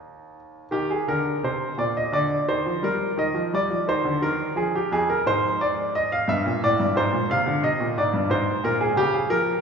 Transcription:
0.00 0.64 D#2 soft
0.00 0.65 D#3 soft
0.00 0.66 D#4 soft
0.00 0.67 G4 soft
0.00 0.35 D#5 medium
0.71 0.97 D#3 soft
0.71 0.90 G4 medium
0.90 1.08 G#4 medium
1.08 1.33 D3 soft
1.08 1.44 A#4 medium
1.43 1.69 C3 soft
1.43 1.74 C5 medium
1.78 2.03 A#2 soft
1.78 1.96 D5 medium
1.97 2.14 D#5 medium
2.12 2.38 D3 soft
2.12 2.49 D5 medium
2.48 2.65 D#3 soft
2.48 2.84 C5 medium
2.66 2.83 F3 soft
2.83 3.08 G3 soft
2.83 3.19 A#4 medium
3.18 3.35 D#3 medium
3.18 3.48 D#5 medium
3.34 3.52 F3 soft
3.53 3.70 G3 soft
3.53 3.84 D5 medium
3.71 3.87 F3 soft
3.88 4.04 D#3 soft
3.88 4.23 C5 medium
4.04 4.21 D3 soft
4.22 4.47 D#3 medium
4.22 4.52 A#4 medium
4.56 4.81 F3 soft
4.56 4.74 G#4 medium
4.75 4.92 G4 medium
4.92 5.16 F2 medium
4.92 5.09 G#4 medium
5.10 5.26 A#4 medium
5.26 6.00 G#2 medium
5.26 5.60 C5 medium
5.61 5.95 D5 medium
5.95 6.12 D#5 medium
6.12 6.29 F5 medium
6.28 6.44 G2 medium
6.28 6.62 E5 medium
6.46 6.61 A#2 medium
6.63 6.78 A2 soft
6.63 6.92 D5 medium
6.80 6.95 G2 soft
6.96 7.12 G#2 medium
6.96 7.25 C5 medium
7.13 7.29 A#2 soft
7.30 7.45 C3 medium
7.30 7.63 F5 medium
7.46 7.62 D3 medium
7.63 7.78 C3 soft
7.63 7.96 D#5 medium
7.80 7.95 A#2 medium
7.97 8.12 G#2 soft
7.97 8.30 D5 medium
8.13 8.29 G2 medium
8.30 8.54 G#2 medium
8.30 8.63 C5 medium
8.64 8.87 A#2 medium
8.64 8.80 A#4 medium
8.81 8.97 G#4 medium
8.96 9.20 C#3 medium
8.96 9.13 G4 medium
9.14 9.30 G#4 medium
9.30 9.53 F3 medium
9.30 9.58 A#4 medium

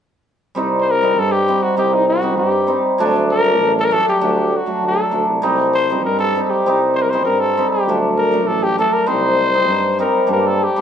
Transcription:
0.55 1.20 C2 medium
0.55 1.01 G3 medium
0.55 0.79 C4 medium
0.55 0.80 D#4 medium
0.81 0.92 C5 medium
0.91 1.21 A#4 medium
1.02 1.47 G3 medium
1.02 1.25 C4 soft
1.02 1.26 D#4 medium
1.19 1.55 G2 medium
1.19 1.33 A4 medium
1.32 1.64 G4 medium
1.48 1.75 G3 medium
1.48 1.63 C4 medium
1.48 1.64 D#4 medium
1.62 1.77 F#4 medium
1.77 2.41 C2 medium
1.77 2.20 G3 medium
1.77 2.01 C4 medium
1.77 2.01 D#4 medium
1.77 1.96 G4 medium
1.94 2.08 D#4 medium
2.08 2.37 F#4 medium
2.22 2.66 G3 medium
2.22 2.46 C4 medium
2.22 2.46 D#4 medium
2.38 2.76 G2 medium
2.38 2.81 G4 medium
2.67 3.05 G3 medium
2.67 2.84 C4 medium
2.67 2.84 D#4 medium
2.98 3.63 D2 loud
2.98 3.43 F#3 medium
2.98 3.23 A3 medium
2.98 3.23 D4 loud
3.31 3.73 A#4 medium
3.44 3.90 F#3 medium
3.44 3.68 A3 medium
3.44 3.68 D4 medium
3.61 3.98 A1 medium
3.80 3.86 A4 medium
3.85 3.94 A#4 medium
3.91 4.20 F#3 medium
3.91 4.06 A3 medium
3.91 4.07 D4 medium
3.91 4.08 A4 loud
4.09 4.58 G4 medium
4.21 4.59 D2 loud
4.21 4.65 F#3 medium
4.21 4.45 A3 medium
4.21 4.44 D4 medium
4.56 4.85 F#4 medium
4.66 5.10 F#3 medium
4.66 4.90 A3 soft
4.66 4.90 D4 medium
4.83 5.01 D2 medium
4.88 5.28 A4 medium
5.11 5.27 D2 medium
5.11 5.49 F#3 medium
5.11 5.28 A3 medium
5.11 5.28 D4 medium
5.28 5.42 C2 medium
5.42 6.07 C2 medium
5.42 5.89 G3 medium
5.42 5.66 C4 medium
5.42 5.66 D#4 medium
5.75 6.03 C5 medium
5.90 6.34 G3 medium
5.90 6.13 C4 soft
5.90 6.13 D#4 medium
6.05 6.42 G2 medium
6.05 6.18 A#4 medium
6.19 6.43 A4 medium
6.36 6.65 G3 medium
6.36 6.50 C4 medium
6.36 6.51 D#4 medium
6.43 6.52 A4 medium
6.50 6.80 G4 medium
6.65 7.27 C2 medium
6.65 7.12 G3 medium
6.65 6.88 C4 medium
6.65 6.89 D#4 medium
6.95 7.04 C5 medium
7.02 7.11 A#4 medium
7.10 7.56 G3 medium
7.10 7.35 C4 medium
7.10 7.25 C5 medium
7.14 7.35 D#4 medium
7.25 7.62 G2 medium
7.25 7.42 A#4 medium
7.40 7.70 A4 medium
7.57 7.92 G3 medium
7.57 7.72 C4 medium
7.57 7.73 D#4 medium
7.71 7.99 G4 medium
7.87 8.49 D2 loud
7.87 8.30 F#3 medium
7.87 8.11 A3 medium
7.87 8.11 D4 medium
8.18 8.49 A#4 medium
8.32 8.77 F#3 medium
8.32 8.55 A3 medium
8.32 8.56 D4 medium
8.47 8.84 A1 medium
8.47 8.65 A4 medium
8.63 8.78 G4 medium
8.78 9.13 F#3 medium
8.78 8.94 A3 medium
8.78 8.94 D4 medium
8.78 8.95 A4 medium
8.93 9.09 A#4 medium
9.06 9.71 C2 loud
9.06 9.53 G3 medium
9.06 9.30 C4 medium
9.06 9.30 D#4 medium
9.06 9.99 C5 medium
9.54 9.98 G3 medium
9.54 9.77 C4 medium
9.54 9.77 D#4 medium
9.69 10.06 G2 medium
9.99 10.26 G3 medium
9.99 10.15 C4 medium
9.99 10.15 D#4 medium
9.99 10.28 A#4 medium
10.27 10.66 G2 medium
10.27 10.75 G3 medium
10.27 10.52 A#3 medium
10.27 10.52 D4 medium
10.32 10.48 A#4 medium
10.47 10.65 A4 medium
10.64 10.81 G4 medium
10.76 10.81 G3 medium
10.76 10.81 A#3 medium
10.76 10.81 D4 medium

